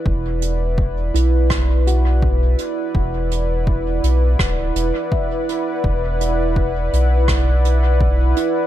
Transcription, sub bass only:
0.05 E1
1.14 B1
2.95 E1
4.03 B1
4.39 D1
4.75 E1
5.84 E1
6.93 B1

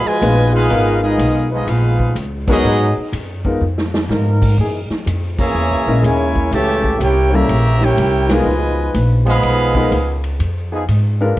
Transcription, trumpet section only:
0.07 F4 B4 D#5 G#5
0.55 D#4 G#4 B4 F5
1.03 B3 F4 G#4 D#5
1.54 B3 F4 G#4 D#5
1.70 D#4 G#4 B4 F5
2.50 B3 F#4 G#4 D#5
5.40 G#4 C#5 E5 A#5
6.06 E4 A#4 C#5 G#5
6.54 G4 C#5 E5 A5
7.03 E4 A#4 C#5 G5
7.35 G4 C#5 E5 A#5
7.85 E4 A#4 C#5 G5
8.33 F4 B4 D#5 G#5
9.28 G#4 D#5 F5 B5

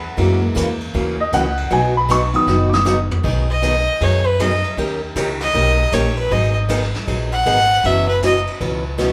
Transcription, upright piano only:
Already playing: F#5 B5
0.17 E3 G#3 A#3
1.20 D#5
1.34 F#5
1.73 G#5
1.97 B5
2.11 C#6
2.33 D#3 F#3 B3 D#6
2.69 D6
2.74 D#6

